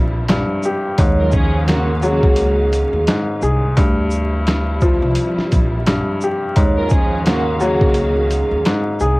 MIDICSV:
0, 0, Header, 1, 8, 480
1, 0, Start_track
1, 0, Tempo, 697674
1, 676, Time_signature, 4, 2, 24, 8
1, 6329, End_track
2, 0, Start_track
2, 0, Title_t, "Vibraphone"
2, 0, Program_c, 0, 11
2, 676, Note_on_c, 0, 73, 98
2, 892, Note_off_c, 0, 73, 0
2, 918, Note_on_c, 0, 72, 89
2, 1133, Note_off_c, 0, 72, 0
2, 1158, Note_on_c, 0, 70, 74
2, 1373, Note_off_c, 0, 70, 0
2, 1391, Note_on_c, 0, 68, 93
2, 2086, Note_off_c, 0, 68, 0
2, 4514, Note_on_c, 0, 73, 95
2, 4731, Note_off_c, 0, 73, 0
2, 4760, Note_on_c, 0, 72, 87
2, 4974, Note_off_c, 0, 72, 0
2, 4999, Note_on_c, 0, 70, 81
2, 5214, Note_off_c, 0, 70, 0
2, 5240, Note_on_c, 0, 68, 86
2, 5931, Note_off_c, 0, 68, 0
2, 6329, End_track
3, 0, Start_track
3, 0, Title_t, "String section"
3, 0, Program_c, 1, 48
3, 818, Note_on_c, 1, 54, 80
3, 818, Note_on_c, 1, 65, 84
3, 818, Note_on_c, 1, 70, 84
3, 897, Note_off_c, 1, 54, 0
3, 897, Note_off_c, 1, 65, 0
3, 897, Note_off_c, 1, 70, 0
3, 904, Note_on_c, 1, 53, 84
3, 905, Note_on_c, 1, 61, 96
3, 905, Note_on_c, 1, 68, 102
3, 1101, Note_off_c, 1, 53, 0
3, 1101, Note_off_c, 1, 61, 0
3, 1101, Note_off_c, 1, 68, 0
3, 1148, Note_on_c, 1, 49, 98
3, 1148, Note_on_c, 1, 58, 90
3, 1148, Note_on_c, 1, 66, 100
3, 1343, Note_off_c, 1, 49, 0
3, 1343, Note_off_c, 1, 58, 0
3, 1343, Note_off_c, 1, 66, 0
3, 1393, Note_on_c, 1, 49, 83
3, 1393, Note_on_c, 1, 66, 88
3, 1394, Note_on_c, 1, 58, 84
3, 1847, Note_off_c, 1, 49, 0
3, 1847, Note_off_c, 1, 58, 0
3, 1847, Note_off_c, 1, 66, 0
3, 4664, Note_on_c, 1, 54, 81
3, 4664, Note_on_c, 1, 65, 83
3, 4664, Note_on_c, 1, 70, 91
3, 4741, Note_off_c, 1, 54, 0
3, 4741, Note_off_c, 1, 65, 0
3, 4741, Note_off_c, 1, 70, 0
3, 4756, Note_on_c, 1, 53, 97
3, 4756, Note_on_c, 1, 61, 83
3, 4756, Note_on_c, 1, 68, 90
3, 4948, Note_off_c, 1, 53, 0
3, 4948, Note_off_c, 1, 61, 0
3, 4948, Note_off_c, 1, 68, 0
3, 4994, Note_on_c, 1, 49, 91
3, 4994, Note_on_c, 1, 58, 96
3, 4994, Note_on_c, 1, 66, 101
3, 5187, Note_off_c, 1, 49, 0
3, 5187, Note_off_c, 1, 58, 0
3, 5187, Note_off_c, 1, 66, 0
3, 5230, Note_on_c, 1, 49, 84
3, 5230, Note_on_c, 1, 58, 89
3, 5230, Note_on_c, 1, 66, 94
3, 5685, Note_off_c, 1, 49, 0
3, 5685, Note_off_c, 1, 66, 0
3, 5686, Note_off_c, 1, 58, 0
3, 6329, End_track
4, 0, Start_track
4, 0, Title_t, "String section"
4, 0, Program_c, 2, 48
4, 0, Note_on_c, 2, 48, 89
4, 0, Note_on_c, 2, 53, 78
4, 0, Note_on_c, 2, 55, 67
4, 0, Note_on_c, 2, 64, 85
4, 658, Note_off_c, 2, 48, 0
4, 658, Note_off_c, 2, 53, 0
4, 658, Note_off_c, 2, 55, 0
4, 659, Note_off_c, 2, 64, 0
4, 677, Note_on_c, 2, 56, 75
4, 678, Note_on_c, 2, 51, 73
4, 678, Note_on_c, 2, 61, 76
4, 678, Note_on_c, 2, 77, 83
4, 2578, Note_off_c, 2, 51, 0
4, 2578, Note_off_c, 2, 56, 0
4, 2578, Note_off_c, 2, 61, 0
4, 2578, Note_off_c, 2, 77, 0
4, 2593, Note_on_c, 2, 48, 77
4, 2593, Note_on_c, 2, 53, 76
4, 2593, Note_on_c, 2, 55, 74
4, 2593, Note_on_c, 2, 64, 89
4, 4495, Note_off_c, 2, 48, 0
4, 4495, Note_off_c, 2, 53, 0
4, 4495, Note_off_c, 2, 55, 0
4, 4496, Note_off_c, 2, 64, 0
4, 4503, Note_on_c, 2, 77, 91
4, 4504, Note_on_c, 2, 51, 78
4, 4505, Note_on_c, 2, 56, 73
4, 4505, Note_on_c, 2, 61, 78
4, 6329, Note_off_c, 2, 51, 0
4, 6329, Note_off_c, 2, 56, 0
4, 6329, Note_off_c, 2, 61, 0
4, 6329, Note_off_c, 2, 77, 0
4, 6329, End_track
5, 0, Start_track
5, 0, Title_t, "Upright piano"
5, 0, Program_c, 3, 0
5, 0, Control_c, 3, 64, 127
5, 0, Note_on_c, 3, 43, 96
5, 0, Note_on_c, 3, 53, 97
5, 186, Note_off_c, 3, 43, 0
5, 196, Note_on_c, 3, 43, 88
5, 449, Note_on_c, 3, 67, 82
5, 676, Note_off_c, 3, 43, 0
5, 677, Note_off_c, 3, 53, 0
5, 677, Note_on_c, 3, 44, 90
5, 683, Note_off_c, 3, 67, 0
5, 685, Control_c, 3, 64, 0
5, 811, Control_c, 3, 64, 127
5, 1395, Note_on_c, 3, 54, 99
5, 2107, Note_off_c, 3, 44, 0
5, 2118, Note_on_c, 3, 44, 87
5, 2359, Note_on_c, 3, 68, 84
5, 2592, Note_on_c, 3, 43, 92
5, 2596, Note_off_c, 3, 54, 0
5, 2597, Note_off_c, 3, 44, 0
5, 2598, Note_off_c, 3, 68, 0
5, 2605, Control_c, 3, 64, 0
5, 2719, Control_c, 3, 64, 127
5, 3317, Note_on_c, 3, 53, 96
5, 4025, Note_off_c, 3, 43, 0
5, 4036, Note_on_c, 3, 43, 90
5, 4291, Note_on_c, 3, 67, 82
5, 4514, Note_on_c, 3, 44, 90
5, 4516, Note_off_c, 3, 43, 0
5, 4517, Note_off_c, 3, 53, 0
5, 4523, Note_off_c, 3, 67, 0
5, 4526, Control_c, 3, 64, 0
5, 4646, Control_c, 3, 64, 127
5, 5233, Note_on_c, 3, 54, 103
5, 5946, Note_off_c, 3, 44, 0
5, 5956, Note_on_c, 3, 44, 87
5, 6197, Note_on_c, 3, 68, 85
5, 6329, Note_off_c, 3, 44, 0
5, 6329, Note_off_c, 3, 54, 0
5, 6329, Note_off_c, 3, 68, 0
5, 6329, End_track
6, 0, Start_track
6, 0, Title_t, "Upright bass"
6, 0, Program_c, 4, 32
6, 0, Note_on_c, 4, 34, 98
6, 283, Note_off_c, 4, 34, 0
6, 678, Note_on_c, 4, 39, 107
6, 1509, Note_off_c, 4, 39, 0
6, 1535, Note_on_c, 4, 37, 90
6, 1945, Note_off_c, 4, 37, 0
6, 2016, Note_on_c, 4, 39, 84
6, 2101, Note_off_c, 4, 39, 0
6, 2355, Note_on_c, 4, 36, 98
6, 2560, Note_off_c, 4, 36, 0
6, 2597, Note_on_c, 4, 38, 110
6, 3429, Note_off_c, 4, 38, 0
6, 3456, Note_on_c, 4, 36, 91
6, 3541, Note_off_c, 4, 36, 0
6, 3801, Note_on_c, 4, 34, 104
6, 4123, Note_off_c, 4, 34, 0
6, 4518, Note_on_c, 4, 39, 104
6, 5349, Note_off_c, 4, 39, 0
6, 5374, Note_on_c, 4, 37, 95
6, 5785, Note_off_c, 4, 37, 0
6, 5856, Note_on_c, 4, 39, 85
6, 5941, Note_off_c, 4, 39, 0
6, 6196, Note_on_c, 4, 36, 94
6, 6329, Note_off_c, 4, 36, 0
6, 6329, End_track
7, 0, Start_track
7, 0, Title_t, "Muted upright bass strokes"
7, 3695, Note_on_c, 9, 29, 48
7, 3764, Note_off_c, 9, 29, 0
7, 6329, End_track
8, 0, Start_track
8, 0, Title_t, "Drums"
8, 195, Note_on_c, 9, 42, 69
8, 201, Note_on_c, 9, 40, 97
8, 205, Note_on_c, 9, 38, 126
8, 264, Note_off_c, 9, 42, 0
8, 270, Note_off_c, 9, 40, 0
8, 273, Note_off_c, 9, 38, 0
8, 431, Note_on_c, 9, 82, 54
8, 500, Note_off_c, 9, 82, 0
8, 674, Note_on_c, 9, 42, 96
8, 677, Note_on_c, 9, 36, 122
8, 742, Note_off_c, 9, 42, 0
8, 746, Note_off_c, 9, 36, 0
8, 905, Note_on_c, 9, 82, 56
8, 917, Note_on_c, 9, 36, 95
8, 974, Note_off_c, 9, 82, 0
8, 986, Note_off_c, 9, 36, 0
8, 1155, Note_on_c, 9, 42, 66
8, 1162, Note_on_c, 9, 40, 97
8, 1165, Note_on_c, 9, 38, 121
8, 1223, Note_off_c, 9, 42, 0
8, 1230, Note_off_c, 9, 40, 0
8, 1234, Note_off_c, 9, 38, 0
8, 1391, Note_on_c, 9, 82, 53
8, 1460, Note_off_c, 9, 82, 0
8, 1534, Note_on_c, 9, 36, 94
8, 1603, Note_off_c, 9, 36, 0
8, 1623, Note_on_c, 9, 42, 80
8, 1692, Note_off_c, 9, 42, 0
8, 1877, Note_on_c, 9, 42, 52
8, 1877, Note_on_c, 9, 82, 51
8, 1945, Note_off_c, 9, 42, 0
8, 1945, Note_off_c, 9, 82, 0
8, 2114, Note_on_c, 9, 42, 66
8, 2120, Note_on_c, 9, 40, 99
8, 2123, Note_on_c, 9, 38, 127
8, 2183, Note_off_c, 9, 42, 0
8, 2189, Note_off_c, 9, 40, 0
8, 2192, Note_off_c, 9, 38, 0
8, 2351, Note_on_c, 9, 82, 53
8, 2420, Note_off_c, 9, 82, 0
8, 2593, Note_on_c, 9, 42, 92
8, 2597, Note_on_c, 9, 36, 119
8, 2662, Note_off_c, 9, 42, 0
8, 2666, Note_off_c, 9, 36, 0
8, 2824, Note_on_c, 9, 82, 57
8, 2893, Note_off_c, 9, 82, 0
8, 3074, Note_on_c, 9, 42, 70
8, 3081, Note_on_c, 9, 40, 100
8, 3085, Note_on_c, 9, 38, 123
8, 3143, Note_off_c, 9, 42, 0
8, 3150, Note_off_c, 9, 40, 0
8, 3154, Note_off_c, 9, 38, 0
8, 3311, Note_on_c, 9, 82, 52
8, 3316, Note_on_c, 9, 36, 98
8, 3379, Note_off_c, 9, 82, 0
8, 3385, Note_off_c, 9, 36, 0
8, 3544, Note_on_c, 9, 42, 83
8, 3613, Note_off_c, 9, 42, 0
8, 3705, Note_on_c, 9, 38, 37
8, 3773, Note_off_c, 9, 38, 0
8, 3796, Note_on_c, 9, 42, 53
8, 3796, Note_on_c, 9, 82, 51
8, 3801, Note_on_c, 9, 36, 90
8, 3865, Note_off_c, 9, 42, 0
8, 3865, Note_off_c, 9, 82, 0
8, 3869, Note_off_c, 9, 36, 0
8, 4034, Note_on_c, 9, 42, 68
8, 4040, Note_on_c, 9, 40, 102
8, 4044, Note_on_c, 9, 38, 125
8, 4103, Note_off_c, 9, 42, 0
8, 4109, Note_off_c, 9, 40, 0
8, 4112, Note_off_c, 9, 38, 0
8, 4271, Note_on_c, 9, 82, 54
8, 4340, Note_off_c, 9, 82, 0
8, 4512, Note_on_c, 9, 42, 95
8, 4517, Note_on_c, 9, 36, 117
8, 4581, Note_off_c, 9, 42, 0
8, 4586, Note_off_c, 9, 36, 0
8, 4743, Note_on_c, 9, 82, 56
8, 4757, Note_on_c, 9, 36, 101
8, 4812, Note_off_c, 9, 82, 0
8, 4825, Note_off_c, 9, 36, 0
8, 4993, Note_on_c, 9, 42, 67
8, 5000, Note_on_c, 9, 40, 96
8, 5004, Note_on_c, 9, 38, 126
8, 5062, Note_off_c, 9, 42, 0
8, 5069, Note_off_c, 9, 40, 0
8, 5073, Note_off_c, 9, 38, 0
8, 5229, Note_on_c, 9, 82, 52
8, 5298, Note_off_c, 9, 82, 0
8, 5374, Note_on_c, 9, 36, 94
8, 5443, Note_off_c, 9, 36, 0
8, 5464, Note_on_c, 9, 42, 84
8, 5532, Note_off_c, 9, 42, 0
8, 5715, Note_on_c, 9, 42, 52
8, 5715, Note_on_c, 9, 82, 53
8, 5784, Note_off_c, 9, 42, 0
8, 5784, Note_off_c, 9, 82, 0
8, 5953, Note_on_c, 9, 42, 71
8, 5959, Note_on_c, 9, 40, 100
8, 5963, Note_on_c, 9, 38, 127
8, 6022, Note_off_c, 9, 42, 0
8, 6028, Note_off_c, 9, 40, 0
8, 6031, Note_off_c, 9, 38, 0
8, 6190, Note_on_c, 9, 82, 53
8, 6259, Note_off_c, 9, 82, 0
8, 6329, End_track
0, 0, End_of_file